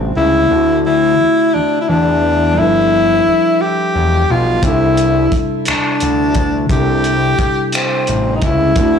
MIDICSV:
0, 0, Header, 1, 5, 480
1, 0, Start_track
1, 0, Key_signature, 0, "major"
1, 0, Tempo, 689655
1, 342, Time_signature, 6, 3, 24, 8
1, 6257, End_track
2, 0, Start_track
2, 0, Title_t, "Tenor saxophone"
2, 0, Program_c, 0, 66
2, 117, Note_on_c, 0, 64, 86
2, 562, Note_off_c, 0, 64, 0
2, 600, Note_on_c, 0, 64, 85
2, 1074, Note_on_c, 0, 62, 73
2, 1085, Note_off_c, 0, 64, 0
2, 1257, Note_off_c, 0, 62, 0
2, 1262, Note_on_c, 0, 64, 51
2, 1313, Note_on_c, 0, 62, 87
2, 1324, Note_off_c, 0, 64, 0
2, 1801, Note_on_c, 0, 64, 94
2, 1811, Note_off_c, 0, 62, 0
2, 2517, Note_on_c, 0, 67, 79
2, 2528, Note_off_c, 0, 64, 0
2, 3002, Note_on_c, 0, 65, 83
2, 3012, Note_off_c, 0, 67, 0
2, 3237, Note_on_c, 0, 64, 89
2, 3247, Note_off_c, 0, 65, 0
2, 3761, Note_off_c, 0, 64, 0
2, 3958, Note_on_c, 0, 62, 80
2, 4642, Note_off_c, 0, 62, 0
2, 4679, Note_on_c, 0, 67, 93
2, 5363, Note_off_c, 0, 67, 0
2, 5399, Note_on_c, 0, 60, 72
2, 5819, Note_on_c, 0, 63, 61
2, 5829, Note_off_c, 0, 60, 0
2, 5875, Note_on_c, 0, 64, 90
2, 5885, Note_off_c, 0, 63, 0
2, 6257, Note_off_c, 0, 64, 0
2, 6257, End_track
3, 0, Start_track
3, 0, Title_t, "Tine electric piano"
3, 0, Program_c, 1, 4
3, 0, Control_c, 1, 64, 127
3, 0, Note_on_c, 1, 48, 52
3, 0, Note_on_c, 1, 55, 50
3, 0, Note_on_c, 1, 57, 51
3, 0, Note_on_c, 1, 62, 48
3, 0, Note_on_c, 1, 66, 44
3, 0, Note_on_c, 1, 67, 55
3, 305, Note_off_c, 1, 48, 0
3, 314, Note_off_c, 1, 55, 0
3, 317, Note_on_c, 1, 50, 52
3, 323, Note_off_c, 1, 57, 0
3, 331, Note_off_c, 1, 62, 0
3, 336, Note_on_c, 1, 57, 49
3, 349, Note_on_c, 1, 60, 50
3, 352, Control_c, 1, 64, 0
3, 357, Note_off_c, 1, 66, 0
3, 363, Note_off_c, 1, 67, 0
3, 371, Note_on_c, 1, 64, 46
3, 389, Note_on_c, 1, 66, 62
3, 463, Control_c, 1, 64, 127
3, 1742, Note_off_c, 1, 50, 0
3, 1751, Note_off_c, 1, 57, 0
3, 1758, Note_off_c, 1, 60, 0
3, 1760, Note_on_c, 1, 55, 52
3, 1769, Note_off_c, 1, 64, 0
3, 1775, Note_on_c, 1, 62, 49
3, 1778, Note_off_c, 1, 66, 0
3, 1789, Control_c, 1, 64, 0
3, 1789, Note_on_c, 1, 76, 49
3, 1802, Note_on_c, 1, 53, 50
3, 1817, Note_on_c, 1, 69, 50
3, 1834, Note_on_c, 1, 71, 60
3, 1891, Control_c, 1, 64, 127
3, 3183, Note_off_c, 1, 55, 0
3, 3190, Note_off_c, 1, 62, 0
3, 3195, Note_on_c, 1, 48, 52
3, 3198, Note_off_c, 1, 76, 0
3, 3204, Note_off_c, 1, 53, 0
3, 3211, Note_on_c, 1, 55, 47
3, 3212, Note_off_c, 1, 69, 0
3, 3220, Note_off_c, 1, 71, 0
3, 3230, Note_on_c, 1, 62, 49
3, 3231, Control_c, 1, 64, 0
3, 3247, Note_on_c, 1, 63, 38
3, 3264, Note_on_c, 1, 69, 62
3, 3280, Note_off_c, 1, 63, 0
3, 3292, Note_on_c, 1, 64, 51
3, 3334, Control_c, 1, 64, 127
3, 4620, Note_off_c, 1, 48, 0
3, 4628, Note_off_c, 1, 55, 0
3, 4636, Note_on_c, 1, 48, 53
3, 4638, Note_off_c, 1, 62, 0
3, 4654, Note_on_c, 1, 55, 52
3, 4655, Note_off_c, 1, 69, 0
3, 4669, Note_off_c, 1, 64, 0
3, 4672, Note_on_c, 1, 62, 52
3, 4691, Note_on_c, 1, 64, 48
3, 4707, Note_on_c, 1, 69, 56
3, 6061, Note_off_c, 1, 48, 0
3, 6070, Note_off_c, 1, 55, 0
3, 6077, Note_on_c, 1, 50, 52
3, 6079, Note_off_c, 1, 62, 0
3, 6089, Note_off_c, 1, 64, 0
3, 6091, Note_on_c, 1, 57, 51
3, 6096, Note_off_c, 1, 69, 0
3, 6109, Note_on_c, 1, 60, 50
3, 6111, Control_c, 1, 64, 0
3, 6126, Note_on_c, 1, 64, 49
3, 6146, Note_on_c, 1, 66, 59
3, 6215, Control_c, 1, 64, 127
3, 6257, Note_off_c, 1, 50, 0
3, 6257, Note_off_c, 1, 57, 0
3, 6257, Note_off_c, 1, 60, 0
3, 6257, Note_off_c, 1, 64, 0
3, 6257, Note_off_c, 1, 66, 0
3, 6257, End_track
4, 0, Start_track
4, 0, Title_t, "Analog synth bass"
4, 0, Program_c, 2, 38
4, 0, Note_on_c, 2, 33, 82
4, 86, Note_off_c, 2, 33, 0
4, 116, Note_on_c, 2, 37, 82
4, 326, Note_off_c, 2, 37, 0
4, 357, Note_on_c, 2, 38, 88
4, 801, Note_off_c, 2, 38, 0
4, 838, Note_on_c, 2, 40, 43
4, 882, Note_off_c, 2, 40, 0
4, 1081, Note_on_c, 2, 40, 45
4, 1125, Note_off_c, 2, 40, 0
4, 1319, Note_on_c, 2, 40, 80
4, 1794, Note_on_c, 2, 31, 90
4, 1805, Note_off_c, 2, 40, 0
4, 2240, Note_off_c, 2, 31, 0
4, 2277, Note_on_c, 2, 28, 40
4, 2321, Note_off_c, 2, 28, 0
4, 2752, Note_on_c, 2, 28, 81
4, 2964, Note_off_c, 2, 28, 0
4, 2994, Note_on_c, 2, 35, 87
4, 3205, Note_off_c, 2, 35, 0
4, 3229, Note_on_c, 2, 36, 94
4, 3678, Note_off_c, 2, 36, 0
4, 3709, Note_on_c, 2, 38, 41
4, 3755, Note_off_c, 2, 38, 0
4, 3954, Note_on_c, 2, 38, 44
4, 3999, Note_off_c, 2, 38, 0
4, 4192, Note_on_c, 2, 38, 72
4, 4639, Note_off_c, 2, 38, 0
4, 4666, Note_on_c, 2, 36, 96
4, 5116, Note_off_c, 2, 36, 0
4, 5148, Note_on_c, 2, 33, 41
4, 5195, Note_off_c, 2, 33, 0
4, 5630, Note_on_c, 2, 33, 89
4, 5842, Note_off_c, 2, 33, 0
4, 5869, Note_on_c, 2, 37, 82
4, 6082, Note_off_c, 2, 37, 0
4, 6104, Note_on_c, 2, 38, 94
4, 6257, Note_off_c, 2, 38, 0
4, 6257, End_track
5, 0, Start_track
5, 0, Title_t, "Drums"
5, 3220, Note_on_c, 9, 42, 66
5, 3221, Note_on_c, 9, 36, 97
5, 3290, Note_off_c, 9, 42, 0
5, 3291, Note_off_c, 9, 36, 0
5, 3462, Note_on_c, 9, 42, 44
5, 3532, Note_off_c, 9, 42, 0
5, 3701, Note_on_c, 9, 42, 46
5, 3703, Note_on_c, 9, 36, 71
5, 3771, Note_off_c, 9, 42, 0
5, 3772, Note_off_c, 9, 36, 0
5, 3936, Note_on_c, 9, 42, 65
5, 3954, Note_on_c, 9, 26, 94
5, 4005, Note_off_c, 9, 42, 0
5, 4024, Note_off_c, 9, 26, 0
5, 4179, Note_on_c, 9, 42, 51
5, 4248, Note_off_c, 9, 42, 0
5, 4416, Note_on_c, 9, 42, 43
5, 4422, Note_on_c, 9, 36, 78
5, 4486, Note_off_c, 9, 42, 0
5, 4492, Note_off_c, 9, 36, 0
5, 4660, Note_on_c, 9, 36, 98
5, 4660, Note_on_c, 9, 42, 62
5, 4729, Note_off_c, 9, 36, 0
5, 4729, Note_off_c, 9, 42, 0
5, 4900, Note_on_c, 9, 42, 41
5, 4970, Note_off_c, 9, 42, 0
5, 5141, Note_on_c, 9, 42, 44
5, 5142, Note_on_c, 9, 36, 73
5, 5210, Note_off_c, 9, 42, 0
5, 5211, Note_off_c, 9, 36, 0
5, 5376, Note_on_c, 9, 42, 65
5, 5395, Note_on_c, 9, 26, 94
5, 5446, Note_off_c, 9, 42, 0
5, 5465, Note_off_c, 9, 26, 0
5, 5618, Note_on_c, 9, 42, 46
5, 5687, Note_off_c, 9, 42, 0
5, 5857, Note_on_c, 9, 42, 43
5, 5862, Note_on_c, 9, 36, 73
5, 5927, Note_off_c, 9, 42, 0
5, 5932, Note_off_c, 9, 36, 0
5, 6095, Note_on_c, 9, 42, 66
5, 6098, Note_on_c, 9, 36, 105
5, 6164, Note_off_c, 9, 42, 0
5, 6168, Note_off_c, 9, 36, 0
5, 6257, End_track
0, 0, End_of_file